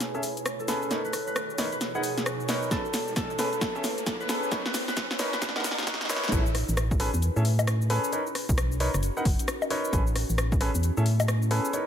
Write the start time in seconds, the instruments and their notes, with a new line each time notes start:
Already playing: ambient pad A3 E4 G#4 B4 C#5, harp G#4, riser
0.00 snare, closed hi-hat, shaker
0.14 grand piano C#4 G#4 A4 E5, shaker
0.23 open hi-hat, shaker
0.37 closed hi-hat, shaker
0.46 cross-stick, closed hi-hat, shaker
0.60 harp A4, shaker
0.68 grand piano C#4 G#4 A4 B4, snare, open hi-hat, shaker
0.82 shaker
0.91 ambient pad B2 D#4 F#4 A#4, grand piano D#4 A#4 B4 C#5, snare, closed hi-hat, shaker
1.05 harp B4, shaker
1.13 cross-stick, open hi-hat, shaker
1.27 harp B4, shaker
1.36 cross-stick, closed hi-hat, shaker
1.50 shaker
1.58 grand piano D#4 A#4 B4 C#5, cross-stick, snare, open hi-hat, shaker
1.72 harp B4, closed hi-hat, shaker
1.81 snare, closed hi-hat, shaker
1.95 grand piano D#4 A#4 B4 F#5, harp G#4, shaker
2.03 open hi-hat, shaker
2.18 snare, closed hi-hat, shaker
2.26 harp F#4, cross-stick, closed hi-hat, shaker
2.40 shaker
2.49 grand piano D#4 A#4 B4 C#5, snare, open hi-hat, shaker
2.63 shaker
2.71 ambient pad A3 E4 G#4 B4, grand piano C#4 G#4 A4 B4, harp A4, kick, snare, closed hi-hat, shaker
2.85 shaker
2.94 snare, open hi-hat, shaker
3.08 shaker
3.16 harp A4, kick, snare, closed hi-hat, shaker
3.30 shaker
3.39 grand piano C#4 G#4 A4 B4, snare, open hi-hat, shaker
3.53 closed hi-hat, shaker
3.61 kick, snare, closed hi-hat, shaker
3.75 grand piano C#4 G#4 A4 E5, shaker
3.84 snare, open hi-hat, shaker
3.98 closed hi-hat, shaker
4.06 kick, snare, closed hi-hat, shaker
4.20 harp B4, shaker
4.29 grand piano C#4 G#4 A4 B4, snare, open hi-hat, shaker
4.43 shaker
4.51 ambient pad B2 D#4 F#4 A#4, grand piano D#4 A#4 B4 C#5, kick, snare, closed hi-hat, shaker
4.66 harp B4, snare, shaker
4.74 snare, open hi-hat, shaker
4.88 harp B4, snare, shaker
4.97 kick, snare, closed hi-hat, shaker
5.11 snare, shaker
5.19 grand piano D#4 A#4 B4 C#5, snare, open hi-hat, shaker
5.33 harp B4, snare, closed hi-hat, shaker
5.42 kick, snare, closed hi-hat, shaker
5.49 snare
5.56 grand piano D#4 A#4 B4 F#5, harp A#4, snare, shaker
5.60 snare
5.64 snare, open hi-hat, shaker
5.71 snare
5.78 snare, closed hi-hat, shaker
5.83 snare
5.87 harp F#4, kick, snare, closed hi-hat, shaker
5.94 snare
6.01 snare, shaker
6.05 snare
6.09 grand piano D#4 A#4 B4 C#5, snare, open hi-hat, shaker
6.17 snare
6.24 snare, shaker
6.28 snare
6.32 fm bass A1, grand piano C#4 G#4 A4 B4, ambient pad C#4 E4 G#4 B4, kick, closed hi-hat, shaker
6.46 shaker
6.55 cross-stick, open hi-hat
6.69 fm bass A1, shaker
6.77 cross-stick, closed hi-hat, shaker
6.91 kick, shaker
7.00 grand piano C#4 G#4 A4 B4, cross-stick, open hi-hat
7.14 fm bass E2, shaker
7.22 closed hi-hat, shaker
7.36 fm bass A2, grand piano C#4 G#4 A4 E5, shaker
7.45 open hi-hat
7.59 closed hi-hat, high bongo, shaker
7.67 cross-stick, closed hi-hat, shaker
7.82 shaker
7.90 grand piano C#4 G#4 A4 B4, open hi-hat
8.04 shaker
8.13 grand piano D#4 A#4 B4 C#5, ambient pad D#4 F#4 A#4, closed hi-hat, shaker
8.27 shaker
8.35 cross-stick, open hi-hat
8.49 fm bass B1, kick, shaker
8.58 cross-stick, closed hi-hat, shaker
8.72 shaker
8.80 grand piano D#4 A#4 B4 C#5, open hi-hat
8.94 fm bass F#1, cross-stick, closed hi-hat, shaker
9.03 closed hi-hat, shaker
9.17 grand piano D#4 A#4 B4 F#5, shaker
9.25 fm bass F#1, kick, open hi-hat
9.39 closed hi-hat, shaker
9.48 cross-stick, closed hi-hat, shaker
9.62 high bongo, shaker
9.70 grand piano D#4 A#4 B4 C#5, open hi-hat
9.85 shaker
9.93 fm bass A1, ambient pad B3 E4 G#4, grand piano C#4 G#4 A4 B4, kick, closed hi-hat, shaker
10.07 shaker
10.16 cross-stick, open hi-hat
10.30 fm bass A1, shaker
10.38 cross-stick, closed hi-hat, shaker
10.52 kick, shaker
10.61 grand piano C#4 G#4 A4 B4, cross-stick, open hi-hat
10.75 fm bass E2, shaker
10.83 closed hi-hat, shaker
10.97 fm bass A2, grand piano C#4 G#4 A4 E5, shaker
11.06 open hi-hat
11.20 closed hi-hat, high bongo, shaker
11.28 cross-stick, closed hi-hat, shaker
11.42 shaker
11.51 grand piano C#4 G#4 A4 B4, open hi-hat
11.65 shaker
11.73 grand piano D#4 A#4 B4 C#5, closed hi-hat, shaker